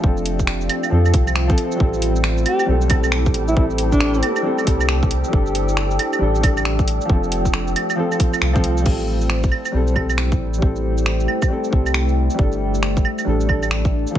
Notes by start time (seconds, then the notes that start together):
Already playing: A3 D4 G4 D5 G5
0.00 F1 F3 C4, kick
0.07 A4
0.12 C4
0.17 F5, shaker
0.26 open hi-hat
0.39 kick, shaker
0.47 finger snap
0.55 F4
0.61 C5, shaker
0.69 open hi-hat, claves
0.83 claves, shaker
0.90 F2 F3 C4 A4
1.05 claves, shaker
1.14 C2, kick, open hi-hat
1.27 claves, shaker
1.36 finger snap
1.47 F3 C4, kick, shaker
1.51 A4
1.58 open hi-hat
1.72 shaker
1.76 G3 C4
1.80 A1 A4, kick
1.94 shaker
2.02 open hi-hat
2.16 E4, shaker
2.24 G4, finger snap
2.38 shaker
2.46 G4 G5, open hi-hat, claves
2.59 claves, shaker
2.66 B1 G3 C4 A4
2.81 shaker
2.88 G3 C4, kick, open hi-hat, claves
2.92 A4
3.04 claves, shaker
3.12 finger snap
3.26 kick, shaker
3.34 A1, open hi-hat
3.48 E4, shaker
3.52 G3 C4
3.57 A1 E4 A4, kick
3.70 shaker
3.78 open hi-hat
3.92 D4, kick, shaker
4.00 finger snap
4.14 shaker
4.23 open hi-hat, claves
4.36 claves, shaker
4.42 G3 C4
4.47 A4
4.58 claves, shaker
4.65 C2 G3 C4 A4, kick, open hi-hat
4.81 claves, shaker
4.89 finger snap
5.03 kick, shaker
5.11 open hi-hat
5.24 shaker
5.28 G3
5.33 G1 A3 D4, kick
5.37 A4
5.46 shaker
5.55 D4, open hi-hat
5.69 shaker
5.77 finger snap
5.91 shaker
5.99 open hi-hat, claves
6.13 D5, claves, shaker
6.19 A1 G3 D4
6.23 A4
6.35 shaker
6.41 G3 D4 A4, kick, open hi-hat, claves
6.57 claves, shaker
6.65 finger snap
6.79 kick, shaker
6.88 open hi-hat
7.01 F3, shaker
7.09 F1 C4 A4, kick
7.23 shaker
7.32 C5, open hi-hat
7.43 C4, kick, shaker
7.54 finger snap
7.67 F4, shaker
7.76 open hi-hat, claves
7.90 F5, claves, shaker
7.96 F3 C4 A4
8.12 claves, shaker
8.20 kick, open hi-hat
8.33 claves, shaker
8.42 C2, finger snap
8.53 F3 C4, kick, shaker
8.57 A4
8.64 open hi-hat
8.78 shaker
8.82 A1 G3, crash
8.86 C4 A4, kick
8.99 E4, shaker
9.21 shaker
9.30 finger snap
9.42 G4, kick, shaker
9.52 claves
9.65 claves, shaker
9.72 B1 G3 C4
9.76 A4
9.87 shaker
9.94 G3 C4, kick, claves
9.98 A4
10.10 G5, claves, shaker
10.18 finger snap
10.32 kick, shaker
10.40 A1
10.54 shaker
10.58 A1 G3
10.62 C4 A4, kick
10.76 shaker
10.98 shaker
11.06 finger snap
11.20 shaker
11.28 claves
11.42 kick, claves, shaker
11.48 G3 C4
11.52 A4
11.64 shaker
11.71 C2 G3 C4 A4, kick
11.86 claves, shaker
11.94 finger snap
12.08 shaker
12.30 shaker
12.35 G3
12.39 G1 D4, kick
12.43 A4
12.52 shaker
12.57 D4
12.74 shaker
12.83 finger snap
12.97 kick, shaker
13.05 claves
13.18 D5, claves, shaker
13.25 A1 G3 D4
13.29 A4
13.40 shaker
13.47 G3 D4 A4, kick, claves
13.63 claves, shaker
13.71 finger snap
13.85 kick, shaker
14.07 F3, shaker
14.15 F1 C4, kick